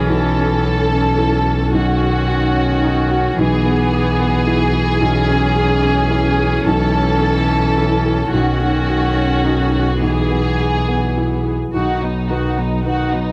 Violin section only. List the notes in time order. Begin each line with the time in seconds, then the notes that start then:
0.10 A4
1.75 F#4
3.40 G#4
6.67 A4
8.32 F#4
10.03 G#4
11.74 F#4
12.02 D#4
12.30 F#4
12.58 D#4
12.84 F#4
13.12 D#4